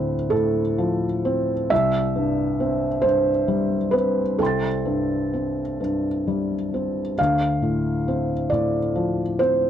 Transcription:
0.00 1.66 D2 soft
0.00 0.15 A2 soft
0.00 1.25 C4 soft
0.00 0.32 B4 medium
0.30 1.06 A2 soft
0.30 1.69 A4 medium
0.78 1.53 F3 soft
1.25 1.71 C4 soft
1.70 4.36 C2 medium
1.70 3.03 E5 medium
2.16 2.85 G2 soft
2.60 3.31 C4 soft
3.02 3.75 G2 soft
3.02 3.93 C5 medium
3.48 4.21 G3 soft
3.91 4.68 C4 soft
3.91 4.39 B4 medium
4.39 7.14 C2 soft
4.39 5.79 A4 medium
4.39 7.14 G5 soft
4.43 7.15 C6 soft
4.43 7.17 A6 soft
4.86 5.60 G2 soft
5.34 6.07 C4 soft
5.80 6.54 G2 soft
6.28 7.01 G3 soft
6.74 7.18 C4 soft
7.18 9.70 D2 soft
7.18 8.50 F5 medium
7.62 8.33 A2 soft
8.08 8.77 C4 soft
8.50 9.22 A2 soft
8.50 9.38 D5 medium
8.96 9.66 F3 soft
9.39 9.70 C4 soft
9.39 9.70 C5 medium

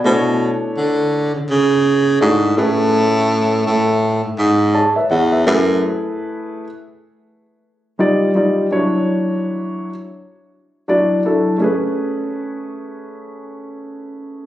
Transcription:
0.00 0.25 D5 medium
0.00 0.24 G#5 medium
0.04 0.52 B2 medium
0.04 1.22 A3 medium
0.04 1.22 D4 medium
0.04 1.22 E4 medium
0.04 0.13 C5 medium
0.12 1.26 C#5 medium
0.77 1.32 D3 medium
1.35 1.41 C#3 soft
1.49 2.18 C#3 medium
2.21 2.56 G#2 medium
2.21 2.51 A3 medium
2.21 2.52 D4 medium
2.21 2.52 E4 medium
2.21 2.52 F#4 medium
2.57 3.62 A2 medium
2.57 3.74 A3 medium
2.57 3.75 C#4 medium
2.57 3.75 G#4 medium
2.57 3.75 B4 medium
3.66 4.21 A2 medium
4.24 4.29 G#2 soft
4.38 4.83 G#2 medium
4.74 4.95 G#4 soft
4.74 4.95 C#5 medium
4.74 5.08 A5 medium
4.96 5.10 B4 medium
4.96 5.10 E5 medium
5.11 5.45 E2 medium
5.11 5.31 C#5 medium
5.11 5.44 F#5 medium
5.32 5.46 B4 medium
5.32 5.46 E5 medium
5.46 5.81 F#2 loud
5.46 6.64 A3 medium
5.46 6.64 E4 medium
5.46 6.64 G#4 medium
5.46 6.64 B4 medium
5.46 5.81 E5 medium
7.99 8.30 G3 medium
7.99 8.30 D#4 medium
7.99 8.30 F4 medium
7.99 8.30 D5 medium
8.35 8.66 G3 medium
8.35 8.66 D#4 medium
8.35 8.66 F4 medium
8.35 8.66 D5 medium
8.71 9.89 F#3 medium
8.71 9.89 D4 medium
8.71 9.89 E4 medium
8.71 9.89 C#5 medium
10.88 11.19 F#3 medium
10.88 11.19 D4 medium
10.88 11.19 E4 medium
10.88 11.19 D5 medium
11.24 11.55 F#3 medium
11.24 11.55 D4 medium
11.24 11.56 E4 medium
11.24 11.56 A4 medium
11.58 14.46 A3 medium
11.58 14.46 C#4 medium
11.58 14.46 G#4 medium
11.64 14.46 B4 medium

